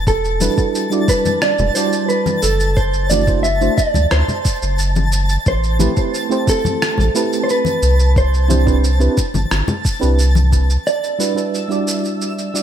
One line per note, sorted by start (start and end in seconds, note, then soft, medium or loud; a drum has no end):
0.00 10.88 A5 medium
0.00 10.88 A6 medium
0.07 0.49 E1 loud
0.07 1.09 A4 medium
0.07 kick loud
0.07 shaker soft
0.24 shaker soft
0.40 0.53 G3 medium
0.40 0.54 D4 medium
0.40 0.54 E4 medium
0.40 0.54 F#4 medium
0.40 0.54 B4 medium
0.40 high conga medium
0.40 shaker medium
0.57 0.87 G3 medium
0.57 0.87 D4 medium
0.57 0.87 E4 medium
0.57 0.88 F#4 medium
0.57 0.88 B4 medium
0.57 kick medium
0.57 shaker soft
0.75 shaker soft
0.90 1.71 G3 medium
0.90 1.71 D4 medium
0.90 1.72 E4 medium
0.90 1.72 F#4 medium
0.90 1.72 D5 medium
0.90 shaker soft
1.08 1.42 B4 medium
1.08 kick loud
1.08 shaker medium
1.25 high conga medium
1.25 low conga medium
1.25 shaker soft
1.42 1.75 D5 loud
1.42 cross-stick medium
1.42 shaker soft
1.58 1.70 E1 loud
1.58 low conga medium
1.58 shaker soft
1.75 2.41 G3 medium
1.75 2.41 D4 medium
1.75 2.41 E4 medium
1.75 2.42 F#4 medium
1.75 2.08 C5 medium
1.75 2.42 D5 medium
1.75 shaker medium
1.93 shaker soft
2.09 2.44 B4 medium
2.09 shaker soft
2.26 high conga medium
2.26 shaker soft
2.43 3.69 F#1 medium
2.43 2.78 A4 medium
2.43 shaker medium
2.60 shaker soft
2.77 3.09 C5 loud
2.77 kick loud
2.77 shaker soft
2.93 shaker soft
3.10 3.24 A3 medium
3.10 3.24 D4 medium
3.10 3.24 E4 medium
3.10 3.24 F#4 medium
3.10 3.43 D5 medium
3.10 3.25 D5 medium
3.10 high conga medium
3.10 shaker medium
3.27 3.45 A3 medium
3.27 3.45 D4 medium
3.27 3.45 E4 medium
3.27 3.45 F#4 medium
3.27 3.45 C5 medium
3.27 kick medium
3.27 shaker soft
3.43 3.75 E5 loud
3.43 shaker soft
3.61 3.78 A3 medium
3.61 3.79 D4 medium
3.61 3.79 E4 medium
3.61 3.79 F#4 medium
3.61 3.79 C5 medium
3.61 shaker soft
3.77 4.12 D5 medium
3.77 kick loud
3.77 shaker medium
3.94 4.06 D2 medium
3.94 high conga medium
3.94 low conga medium
3.94 shaker soft
4.11 4.23 D2 medium
4.11 4.75 C5 loud
4.11 cross-stick medium
4.11 shaker soft
4.28 low conga medium
4.28 shaker soft
4.45 kick loud
4.45 shaker medium
4.62 5.38 F#1 loud
4.62 shaker soft
4.79 shaker soft
4.96 high conga medium
4.96 shaker soft
5.12 shaker medium
5.29 shaker soft
5.46 5.88 A1 loud
5.46 6.49 C5 loud
5.46 kick loud
5.46 shaker soft
5.63 shaker soft
5.79 5.93 A3 medium
5.79 5.93 C4 medium
5.79 5.93 E4 medium
5.79 5.93 G4 medium
5.79 5.93 B4 medium
5.79 high conga medium
5.79 shaker medium
5.96 6.27 A3 medium
5.96 6.26 C4 medium
5.96 6.27 E4 medium
5.96 6.27 G4 medium
5.96 6.27 B4 medium
5.96 kick medium
5.96 shaker soft
6.14 shaker soft
6.29 7.10 A3 medium
6.29 7.11 C4 medium
6.29 7.11 E4 medium
6.29 7.11 G4 medium
6.29 7.12 C5 loud
6.29 shaker soft
6.47 7.43 A4 medium
6.47 kick loud
6.47 shaker medium
6.65 high conga medium
6.65 low conga medium
6.65 shaker soft
6.82 cross-stick medium
6.82 shaker soft
6.98 7.10 A1 loud
6.98 low conga medium
6.98 shaker soft
7.14 7.80 A3 medium
7.14 7.80 C4 medium
7.14 7.80 E4 medium
7.14 7.81 G4 medium
7.14 7.81 B4 medium
7.14 shaker medium
7.33 shaker soft
7.43 7.50 C5 medium
7.49 8.13 B4 medium
7.49 shaker soft
7.65 high conga medium
7.65 shaker soft
7.82 9.09 C2 loud
7.82 shaker medium
7.99 shaker soft
8.16 10.49 C5 loud
8.16 kick loud
8.16 shaker soft
8.34 shaker soft
8.48 8.62 C4 medium
8.48 8.63 D4 medium
8.48 8.63 E4 medium
8.48 8.63 G4 medium
8.48 8.63 C5 medium
8.48 high conga medium
8.48 shaker medium
8.65 8.83 C4 medium
8.65 8.84 D4 medium
8.65 8.84 E4 medium
8.65 8.84 G4 medium
8.65 8.84 B4 medium
8.65 kick medium
8.65 shaker soft
8.84 shaker soft
9.00 9.17 C4 medium
9.00 9.17 D4 medium
9.00 9.18 E4 medium
9.00 9.18 G4 medium
9.00 9.18 B4 medium
9.00 shaker soft
9.18 kick loud
9.18 shaker medium
9.34 9.46 G1 medium
9.34 high conga medium
9.34 low conga medium
9.34 shaker soft
9.51 9.63 G1 medium
9.51 cross-stick medium
9.51 shaker soft
9.68 low conga medium
9.68 shaker soft
9.85 kick loud
9.85 shaker medium
10.00 10.78 C2 loud
10.00 10.18 C4 medium
10.00 10.18 D4 medium
10.00 10.18 E4 medium
10.00 10.19 G4 medium
10.00 10.19 B4 medium
10.00 shaker soft
10.19 shaker soft
10.35 high conga medium
10.35 shaker soft
10.52 kick medium
10.52 shaker medium
10.70 shaker soft
10.85 12.17 D5 medium
10.85 12.63 E5 medium
10.85 12.63 E6 medium
10.85 shaker soft
11.04 shaker soft
11.19 11.32 G3 medium
11.19 11.32 D4 medium
11.19 11.32 E4 medium
11.19 11.33 F#4 medium
11.19 11.33 B4 medium
11.19 shaker medium
11.35 11.65 G3 medium
11.35 11.65 D4 medium
11.35 11.66 E4 medium
11.35 11.66 F#4 medium
11.35 11.66 B4 medium
11.35 shaker soft
11.54 shaker soft
11.68 12.49 G3 medium
11.68 12.50 D4 medium
11.68 12.50 E4 medium
11.68 12.50 F#4 medium
11.68 12.51 D5 medium
11.68 shaker soft
11.88 shaker medium
12.05 shaker soft
12.22 shaker soft
12.38 shaker soft
12.54 12.63 G3 medium
12.54 12.63 D4 medium
12.54 12.63 E4 medium
12.54 12.63 F#4 medium
12.54 12.63 D5 medium
12.54 shaker medium